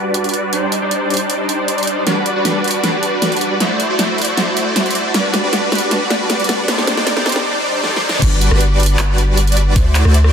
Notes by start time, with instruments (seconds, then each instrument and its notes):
Already playing: supersaw synth G3 D4 F#4 B4 D5
0.14 closed hi-hat
0.24 closed hi-hat
0.29 closed hi-hat
0.34 closed hi-hat
0.53 supersaw synth G3 D4 D#4 C5 D5, closed hi-hat
0.72 closed hi-hat
0.82 supersaw synth G3 D4 D#4 C5 D5
0.91 closed hi-hat
1.10 closed hi-hat
1.14 closed hi-hat
1.17 closed hi-hat
1.30 closed hi-hat
1.49 closed hi-hat
1.68 closed hi-hat
1.78 closed hi-hat
1.83 closed hi-hat
1.87 closed hi-hat
2.07 supersaw synth G3 D4 F#4 B4 D5, snare, closed hi-hat
2.26 closed hi-hat
2.36 supersaw synth G3 D4 F#4 B4 D5
2.45 snare, closed hi-hat
2.64 closed hi-hat
2.68 closed hi-hat
2.71 closed hi-hat
2.84 snare, closed hi-hat
3.03 closed hi-hat
3.22 snare, closed hi-hat
3.32 closed hi-hat
3.37 closed hi-hat
3.41 closed hi-hat
3.60 supersaw synth A3 E4 F#4 C5 D5, snare, closed hi-hat
3.80 closed hi-hat
3.90 supersaw synth A3 E4 F#4 C5 D5
3.99 snare, closed hi-hat
4.18 closed hi-hat
4.22 closed hi-hat
4.25 closed hi-hat
4.37 snare, closed hi-hat
4.57 closed hi-hat
4.76 snare, closed hi-hat
4.86 closed hi-hat
4.91 closed hi-hat
4.95 closed hi-hat
5.14 supersaw synth G3 D4 F#4 B4 D5, snare, closed hi-hat
5.34 snare, closed hi-hat
5.44 supersaw synth G3 D4 F#4 B4 D5
5.53 snare, closed hi-hat
5.72 snare, closed hi-hat
5.75 closed hi-hat
5.78 closed hi-hat
5.91 snare, closed hi-hat
6.10 snare, closed hi-hat
6.30 snare, closed hi-hat
6.40 closed hi-hat
6.44 closed hi-hat
6.49 snare, closed hi-hat
6.68 supersaw synth G3 D4 D#4 C5 D5, snare, closed hi-hat
6.78 snare
6.87 snare, closed hi-hat
6.97 supersaw synth G3 D4 D#4 C5 D5, snare
7.07 snare, closed hi-hat
7.17 snare
7.26 snare, closed hi-hat
7.29 closed hi-hat
7.32 snare, closed hi-hat
7.84 snare
7.96 snare
8.09 snare
8.22 808-style bass G1, supersaw synth G3 D4 F#4 B4 D5, kick, closed hi-hat, crash
8.41 closed hi-hat
8.51 808-style bass G1, supersaw synth G3 D4 F#4 B4 D5, cross-stick
8.61 closed hi-hat
8.80 closed hi-hat
8.83 closed hi-hat
8.86 closed hi-hat
8.99 clap, closed hi-hat
9.18 closed hi-hat
9.37 closed hi-hat
9.47 closed hi-hat
9.52 closed hi-hat
9.57 closed hi-hat
9.76 808-style bass D2, supersaw synth A3 E4 F#4 C5 D5, kick, closed hi-hat
9.95 clap, closed hi-hat
10.05 808-style bass D2, supersaw synth A3 E4 F#4 C5 D5, cross-stick
10.14 closed hi-hat
10.24 cross-stick